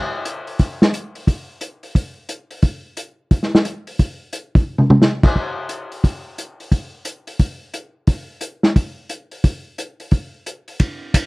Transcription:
0.25 closed hi-hat medium
0.47 open hi-hat soft
0.59 kick soft
0.59 open hi-hat soft
0.82 snare soft
0.94 closed hi-hat soft
1.15 open hi-hat soft
1.27 kick soft
1.27 open hi-hat soft
1.61 closed hi-hat soft
1.83 open hi-hat soft
1.95 kick soft
1.95 open hi-hat soft
2.29 closed hi-hat soft
2.51 open hi-hat soft
2.62 kick soft
2.62 open hi-hat soft
2.97 closed hi-hat soft
3.31 kick soft
3.31 open hi-hat soft
3.43 snare soft
3.55 snare soft
3.65 closed hi-hat soft
3.87 open hi-hat soft
3.99 kick soft
3.99 open hi-hat soft
4.33 closed hi-hat medium
4.55 kick medium
4.55 open hi-hat soft
4.78 mid tom medium
4.90 mid tom medium
5.02 snare soft
5.23 kick medium
5.23 crash medium
5.36 kick soft
5.69 closed hi-hat soft
5.92 open hi-hat soft
6.04 kick soft
6.04 open hi-hat soft
6.38 closed hi-hat soft
6.60 open hi-hat soft
6.72 kick soft
6.72 open hi-hat soft
7.05 closed hi-hat soft
7.27 open hi-hat soft
7.39 kick soft
7.39 open hi-hat soft
7.74 closed hi-hat soft
8.07 kick soft
8.07 open hi-hat soft
8.41 closed hi-hat medium
8.63 snare soft
8.76 kick soft
8.76 open hi-hat soft
9.09 closed hi-hat soft
9.31 open hi-hat soft
9.44 kick soft
9.44 open hi-hat soft
9.78 closed hi-hat soft
10.00 open hi-hat soft
10.11 kick soft
10.11 open hi-hat soft
10.46 closed hi-hat soft
10.68 open hi-hat soft
10.80 kick soft
10.80 ride medium
11.14 kick soft
11.14 hi-hat pedal medium
11.14 ride medium

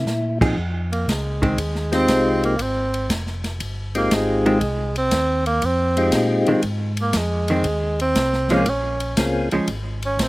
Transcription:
0.00 0.38 E4 medium
0.05 0.55 A#2 medium
0.05 snare soft
0.05 hi-hat pedal soft
0.41 0.56 F3 medium
0.41 0.56 C4 medium
0.41 0.56 D#4 medium
0.41 0.56 G#4 medium
0.41 kick medium
0.41 crash medium
0.57 1.06 F2 medium
0.57 kick soft
0.92 1.11 A#3 medium
0.92 ride soft
1.08 1.57 C#2 medium
1.08 1.94 G#3 medium
1.08 kick soft
1.08 snare medium
1.08 hi-hat pedal medium
1.08 ride medium
1.42 1.57 D#3 medium
1.42 1.57 G#3 medium
1.42 1.57 C4 medium
1.42 kick soft
1.42 ride soft
1.58 2.07 D#2 medium
1.58 kick soft
1.58 ride medium
1.75 snare soft
1.92 2.56 G#3 medium
1.92 2.56 C4 medium
1.92 2.41 C4 loud
1.92 2.56 D#4 medium
1.92 2.56 F4 medium
1.92 2.56 G4 medium
1.92 snare soft
1.92 ride soft
2.08 2.58 C2 medium
2.08 kick soft
2.08 snare medium
2.08 hi-hat pedal soft
2.08 ride medium
2.43 2.63 A#3 medium
2.43 ride soft
2.59 3.08 G#1 medium
2.59 3.11 C4 medium
2.59 kick soft
2.59 ride medium
2.94 ride soft
3.09 3.59 F1 medium
3.09 kick soft
3.09 snare medium
3.09 hi-hat pedal medium
3.09 ride medium
3.27 snare soft
3.44 snare soft
3.44 ride soft
3.60 4.10 G1 medium
3.60 kick soft
3.60 ride medium
3.95 4.59 G#3 medium
3.95 4.16 A#3 medium
3.95 4.59 C4 medium
3.95 4.59 D#4 medium
3.95 4.59 F4 medium
3.95 4.59 G4 medium
3.95 ride soft
4.11 4.60 G#1 medium
4.11 4.97 G#3 medium
4.11 kick soft
4.11 snare medium
4.11 hi-hat pedal medium
4.11 ride medium
4.46 4.60 D#3 medium
4.46 4.61 G#3 medium
4.46 4.61 C4 medium
4.46 ride soft
4.61 5.11 C2 medium
4.61 kick soft
4.61 ride soft
4.96 5.44 C4 medium
4.96 ride soft
5.11 5.61 D#2 medium
5.11 kick soft
5.11 snare medium
5.11 hi-hat pedal soft
5.11 ride medium
5.46 5.67 A#3 medium
5.46 ride soft
5.62 6.12 F2 medium
5.62 6.15 C4 medium
5.62 kick soft
5.62 ride medium
5.97 6.61 G#3 medium
5.97 6.61 C4 medium
5.97 6.61 D#4 medium
5.97 6.61 F4 medium
5.97 6.62 G4 medium
5.97 ride soft
6.12 6.45 A#2 medium
6.12 kick soft
6.12 snare medium
6.12 hi-hat pedal soft
6.12 ride medium
6.46 6.56 A#2 soft
6.46 6.63 D#3 medium
6.46 6.63 G#3 medium
6.46 6.63 C4 medium
6.46 ride soft
6.62 7.13 G#2 medium
6.62 kick soft
6.62 ride medium
6.97 ride soft
7.01 7.19 A#3 medium
7.13 7.64 F2 medium
7.13 kick soft
7.13 snare medium
7.13 hi-hat pedal medium
7.13 ride medium
7.17 8.01 G#3 medium
7.48 7.64 D#3 medium
7.48 7.65 G#3 medium
7.48 7.65 C4 medium
7.48 ride soft
7.64 8.14 D#2 medium
7.64 kick soft
7.64 ride medium
8.00 8.54 C4 medium
8.00 ride soft
8.15 8.65 C2 medium
8.15 kick soft
8.15 snare medium
8.15 hi-hat pedal medium
8.15 ride medium
8.33 snare soft
8.48 8.65 F3 medium
8.48 8.66 G#3 medium
8.48 8.65 A#3 medium
8.48 8.66 C4 medium
8.48 8.66 C#4 medium
8.48 8.66 F4 medium
8.48 snare soft
8.48 ride soft
8.52 8.71 A#3 medium
8.52 8.66 G#4 medium
8.66 9.16 A#1 medium
8.66 9.19 C#4 medium
8.66 kick soft
8.66 ride medium
9.00 ride soft
9.17 9.50 C#2 medium
9.17 9.49 A#3 soft
9.17 9.49 C4 soft
9.17 9.49 C#4 soft
9.17 9.49 F4 soft
9.17 9.49 G#4 medium
9.17 kick soft
9.17 snare medium
9.17 hi-hat pedal medium
9.17 ride medium
9.51 9.60 C#2 soft
9.51 9.67 F3 medium
9.51 9.67 G#3 medium
9.51 9.68 C#4 medium
9.51 ride soft
9.67 10.17 G#1 medium
9.67 kick soft
9.67 ride medium
10.02 10.23 C#4 medium
10.02 ride soft
10.19 10.29 A#1 medium
10.19 10.29 C4 medium
10.19 kick soft
10.19 snare medium
10.19 hi-hat pedal soft
10.19 ride medium

